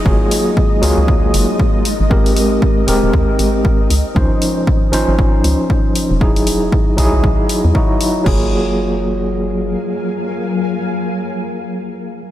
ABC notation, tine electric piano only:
X:1
M:4/4
L:1/8
Q:"Swing 16ths" 1/4=117
K:Gblyd
V:1 name="Tine electric piano"
[G,B,FA]3 [G,B,FA]4 z | [A,C=GB]3 [A,CGB]4 z | [F,DEc]3 [F,DEc]4- [F,DEc] | [^F,^D=E^G]3 [F,DEG]3 [F,DE^F]2 |
[G,B,FA]8- | [G,B,FA]8 |]